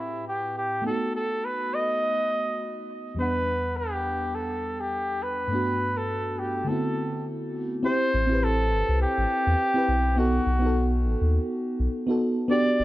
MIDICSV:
0, 0, Header, 1, 4, 480
1, 0, Start_track
1, 0, Tempo, 582524
1, 705, Time_signature, 4, 2, 24, 8
1, 10583, End_track
2, 0, Start_track
2, 0, Title_t, "Flugelhorn"
2, 0, Program_c, 0, 56
2, 0, Note_on_c, 0, 64, 76
2, 224, Note_off_c, 0, 64, 0
2, 229, Note_on_c, 0, 67, 83
2, 451, Note_off_c, 0, 67, 0
2, 477, Note_on_c, 0, 67, 87
2, 695, Note_off_c, 0, 67, 0
2, 712, Note_on_c, 0, 69, 89
2, 932, Note_off_c, 0, 69, 0
2, 955, Note_on_c, 0, 69, 86
2, 1193, Note_on_c, 0, 71, 96
2, 1205, Note_off_c, 0, 69, 0
2, 1435, Note_on_c, 0, 75, 105
2, 1448, Note_off_c, 0, 71, 0
2, 2390, Note_off_c, 0, 75, 0
2, 2634, Note_on_c, 0, 71, 105
2, 3107, Note_on_c, 0, 67, 88
2, 3119, Note_off_c, 0, 71, 0
2, 3583, Note_on_c, 0, 69, 86
2, 3596, Note_off_c, 0, 67, 0
2, 3961, Note_on_c, 0, 67, 86
2, 3973, Note_off_c, 0, 69, 0
2, 4311, Note_on_c, 0, 71, 97
2, 4323, Note_off_c, 0, 67, 0
2, 4924, Note_on_c, 0, 69, 89
2, 4936, Note_off_c, 0, 71, 0
2, 5268, Note_on_c, 0, 67, 78
2, 5280, Note_off_c, 0, 69, 0
2, 5510, Note_on_c, 0, 69, 80
2, 5522, Note_off_c, 0, 67, 0
2, 5988, Note_off_c, 0, 69, 0
2, 6472, Note_on_c, 0, 72, 114
2, 6952, Note_on_c, 0, 69, 107
2, 6964, Note_off_c, 0, 72, 0
2, 7429, Note_off_c, 0, 69, 0
2, 7433, Note_on_c, 0, 67, 108
2, 8389, Note_on_c, 0, 66, 88
2, 8402, Note_off_c, 0, 67, 0
2, 9108, Note_off_c, 0, 66, 0
2, 10311, Note_on_c, 0, 74, 125
2, 10583, Note_off_c, 0, 74, 0
2, 10583, End_track
3, 0, Start_track
3, 0, Title_t, "FM electric piano"
3, 0, Program_c, 1, 5
3, 0, Control_c, 1, 64, 127
3, 0, Note_on_c, 1, 45, 63
3, 0, Note_on_c, 1, 60, 58
3, 0, Note_on_c, 1, 64, 56
3, 0, Note_on_c, 1, 67, 57
3, 0, Note_on_c, 1, 71, 64
3, 667, Note_off_c, 1, 45, 0
3, 674, Note_off_c, 1, 60, 0
3, 674, Note_on_c, 1, 57, 67
3, 682, Note_off_c, 1, 64, 0
3, 689, Note_off_c, 1, 67, 0
3, 694, Note_on_c, 1, 59, 60
3, 697, Note_off_c, 1, 71, 0
3, 714, Note_on_c, 1, 63, 59
3, 716, Control_c, 1, 64, 0
3, 734, Note_on_c, 1, 66, 67
3, 847, Control_c, 1, 64, 127
3, 2585, Note_off_c, 1, 57, 0
3, 2593, Note_on_c, 1, 40, 63
3, 2595, Note_off_c, 1, 59, 0
3, 2605, Note_off_c, 1, 63, 0
3, 2609, Note_on_c, 1, 55, 57
3, 2615, Note_off_c, 1, 66, 0
3, 2624, Note_on_c, 1, 59, 60
3, 2637, Control_c, 1, 64, 0
3, 2639, Note_on_c, 1, 62, 55
3, 2654, Note_on_c, 1, 78, 68
3, 2772, Control_c, 1, 64, 127
3, 4505, Note_off_c, 1, 40, 0
3, 4513, Note_off_c, 1, 55, 0
3, 4513, Note_on_c, 1, 43, 65
3, 4520, Note_off_c, 1, 59, 0
3, 4527, Note_off_c, 1, 62, 0
3, 4529, Note_on_c, 1, 57, 58
3, 4535, Note_off_c, 1, 78, 0
3, 4543, Note_on_c, 1, 59, 59
3, 4555, Control_c, 1, 64, 0
3, 4559, Note_on_c, 1, 62, 61
3, 4573, Note_on_c, 1, 66, 74
3, 4694, Control_c, 1, 64, 127
3, 5465, Note_off_c, 1, 43, 0
3, 5472, Note_on_c, 1, 50, 61
3, 5473, Note_off_c, 1, 57, 0
3, 5480, Note_off_c, 1, 59, 0
3, 5483, Note_on_c, 1, 57, 54
3, 5487, Note_off_c, 1, 62, 0
3, 5495, Note_off_c, 1, 66, 0
3, 5496, Note_on_c, 1, 59, 57
3, 5508, Note_on_c, 1, 60, 58
3, 5516, Control_c, 1, 64, 0
3, 5521, Note_on_c, 1, 64, 59
3, 5532, Note_on_c, 1, 66, 67
3, 5654, Control_c, 1, 64, 127
3, 6424, Note_off_c, 1, 50, 0
3, 6430, Note_off_c, 1, 57, 0
3, 6436, Note_off_c, 1, 59, 0
3, 6439, Note_off_c, 1, 60, 0
3, 6449, Note_off_c, 1, 64, 0
3, 6449, Note_on_c, 1, 60, 79
3, 6454, Note_off_c, 1, 66, 0
3, 6459, Note_on_c, 1, 64, 78
3, 6469, Note_on_c, 1, 67, 81
3, 6474, Control_c, 1, 64, 0
3, 6478, Note_on_c, 1, 72, 96
3, 6599, Control_c, 1, 64, 127
3, 6802, Note_off_c, 1, 60, 0
3, 6806, Note_off_c, 1, 64, 0
3, 6810, Note_on_c, 1, 60, 81
3, 6812, Note_off_c, 1, 67, 0
3, 6816, Note_off_c, 1, 72, 0
3, 6831, Note_on_c, 1, 64, 71
3, 6850, Note_on_c, 1, 67, 72
3, 6871, Note_on_c, 1, 71, 82
3, 7999, Note_off_c, 1, 60, 0
3, 8009, Note_off_c, 1, 64, 0
3, 8019, Note_off_c, 1, 67, 0
3, 8027, Note_on_c, 1, 60, 81
3, 8029, Note_off_c, 1, 71, 0
3, 8035, Note_on_c, 1, 64, 77
3, 8046, Note_on_c, 1, 67, 71
3, 8057, Note_on_c, 1, 71, 87
3, 8124, Note_off_c, 1, 60, 0
3, 8129, Note_off_c, 1, 64, 0
3, 8134, Note_off_c, 1, 67, 0
3, 8139, Note_off_c, 1, 71, 0
3, 8371, Note_on_c, 1, 59, 81
3, 8380, Note_on_c, 1, 63, 80
3, 8390, Note_on_c, 1, 66, 81
3, 8396, Control_c, 1, 64, 0
3, 8401, Note_on_c, 1, 69, 92
3, 8563, Control_c, 1, 64, 127
3, 8720, Note_off_c, 1, 59, 0
3, 8727, Note_off_c, 1, 63, 0
3, 8730, Note_on_c, 1, 59, 78
3, 8732, Note_off_c, 1, 66, 0
3, 8738, Note_off_c, 1, 69, 0
3, 8749, Note_on_c, 1, 63, 69
3, 8770, Note_on_c, 1, 66, 71
3, 8789, Note_on_c, 1, 69, 86
3, 9919, Note_off_c, 1, 59, 0
3, 9929, Note_off_c, 1, 63, 0
3, 9939, Note_off_c, 1, 66, 0
3, 9944, Note_on_c, 1, 59, 79
3, 9949, Note_off_c, 1, 69, 0
3, 9955, Note_on_c, 1, 63, 70
3, 9966, Note_on_c, 1, 66, 70
3, 9977, Note_on_c, 1, 69, 87
3, 10043, Note_off_c, 1, 59, 0
3, 10049, Note_off_c, 1, 63, 0
3, 10054, Note_off_c, 1, 66, 0
3, 10059, Note_off_c, 1, 69, 0
3, 10284, Note_on_c, 1, 59, 92
3, 10294, Note_on_c, 1, 62, 76
3, 10305, Note_on_c, 1, 66, 78
3, 10315, Note_on_c, 1, 67, 95
3, 10317, Control_c, 1, 64, 0
3, 10448, Control_c, 1, 64, 127
3, 10583, Note_off_c, 1, 59, 0
3, 10583, Note_off_c, 1, 62, 0
3, 10583, Note_off_c, 1, 66, 0
3, 10583, Note_off_c, 1, 67, 0
3, 10583, End_track
4, 0, Start_track
4, 0, Title_t, "Analog synth bass"
4, 0, Program_c, 2, 38
4, 6706, Note_on_c, 2, 33, 108
4, 7186, Note_on_c, 2, 31, 105
4, 7198, Note_off_c, 2, 33, 0
4, 7273, Note_off_c, 2, 31, 0
4, 7322, Note_on_c, 2, 36, 97
4, 7462, Note_off_c, 2, 36, 0
4, 7564, Note_on_c, 2, 33, 84
4, 7629, Note_off_c, 2, 33, 0
4, 7803, Note_on_c, 2, 40, 95
4, 7868, Note_off_c, 2, 40, 0
4, 8144, Note_on_c, 2, 35, 84
4, 8565, Note_off_c, 2, 35, 0
4, 8624, Note_on_c, 2, 35, 102
4, 9105, Note_on_c, 2, 33, 110
4, 9117, Note_off_c, 2, 35, 0
4, 9192, Note_off_c, 2, 33, 0
4, 9241, Note_on_c, 2, 39, 98
4, 9382, Note_off_c, 2, 39, 0
4, 9722, Note_on_c, 2, 35, 96
4, 9788, Note_off_c, 2, 35, 0
4, 10545, Note_on_c, 2, 28, 107
4, 10583, Note_off_c, 2, 28, 0
4, 10583, End_track
0, 0, End_of_file